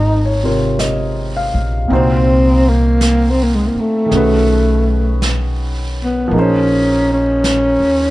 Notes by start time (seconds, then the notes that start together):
Already playing: G#1 F3 A#3 D#4 G#4 C5
0.25 C#5
0.44 C3 F4 A#4 C#5
0.79 D#5, brush sweep, snare, hi-hat pedal
1.37 F5
1.54 A#1
1.88 C2 A#2 C4 D#4 F#4, brush sweep
1.93 C4 C5
2.70 A#3
3.01 brush sweep, snare, hi-hat pedal
3.31 C4
3.44 A#3
3.55 G#3
3.67 A#3
3.75 muted upright bass stroke
3.80 A3
4.06 D#3 G#4
4.11 B1 C#4 F#4, brush sweep, snare
4.17 B4
5.22 brush sweep, snare, hi-hat pedal
6.04 B3
6.28 A#1 F3 A#3
6.32 D#4 G#4, brush sweep
6.39 C#4 C5
7.13 C#4
7.44 brush sweep, snare, hi-hat pedal
7.80 D#2